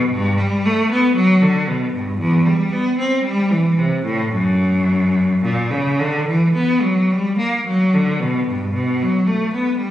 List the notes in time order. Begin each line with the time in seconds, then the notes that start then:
0.10 G2
0.38 G3
0.66 A3
0.91 B3
1.15 F#3
1.42 D3
1.68 B2
1.93 G2
2.18 E2
2.46 G3
2.72 B3
2.98 C4
3.24 G3
3.50 E3
3.78 C3
4.05 A2
4.33 F#2
5.44 A#2
5.71 C#3
5.99 D3
6.28 E3
6.55 B3
6.82 F#3
7.12 G3
7.38 A#3
7.66 F#3
7.94 D3
8.20 B2
8.48 G2
8.74 B2
9.02 F#3
9.27 A3
9.54 B3
9.77 G3